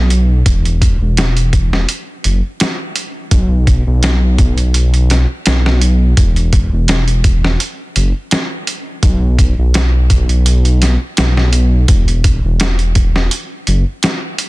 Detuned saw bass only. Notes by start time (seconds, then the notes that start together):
Already playing: B1
0.46 E1
1.01 E1
2.25 F#1
3.32 B1
3.87 B1
5.47 B1
6.18 E1
6.72 E1
7.96 F#1
9.03 B1
9.58 B1
11.18 B1
11.89 E1
12.44 E1
13.68 F#1